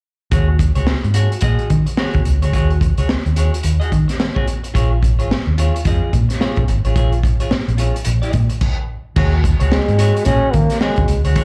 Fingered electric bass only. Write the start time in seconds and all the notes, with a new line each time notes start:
0.32 D#2
0.76 C#2
0.88 muted fingered electric bass stroke
1.04 G#2
1.42 A#2
1.70 D#3
2.15 D#2
2.26 C#2
2.43 D2
2.54 D#2
2.98 C#2
3.09 muted fingered electric bass stroke
3.26 D#2
3.64 D#2
3.92 D#3
4.75 A#1
5.19 G#1
5.30 muted fingered electric bass stroke
5.47 D#2
5.85 F2
6.13 A#2
6.58 A#1
6.69 G#1
6.85 A1
6.96 A#1
7.40 G#1
7.52 muted fingered electric bass stroke
7.68 A#1
8.07 A#1
8.34 A#2
9.16 D#2
9.61 C#2
9.72 muted fingered electric bass stroke
9.88 G#2
10.27 A#2
10.54 D#3
10.98 D#2
11.09 C#2
11.26 D2
11.36 D#2